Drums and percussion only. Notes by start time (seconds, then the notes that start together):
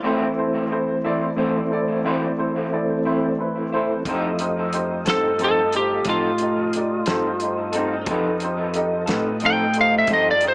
4.05 kick, closed hi-hat
4.39 closed hi-hat
4.73 closed hi-hat
5.06 snare, closed hi-hat
5.39 closed hi-hat
5.72 closed hi-hat
6.05 kick, closed hi-hat
6.38 closed hi-hat
6.73 closed hi-hat
7.06 snare, closed hi-hat
7.40 closed hi-hat
7.73 closed hi-hat
8.06 kick, closed hi-hat
8.40 closed hi-hat
8.74 closed hi-hat
9.07 snare, closed hi-hat
9.40 closed hi-hat
9.74 closed hi-hat
10.07 kick, closed hi-hat
10.41 closed hi-hat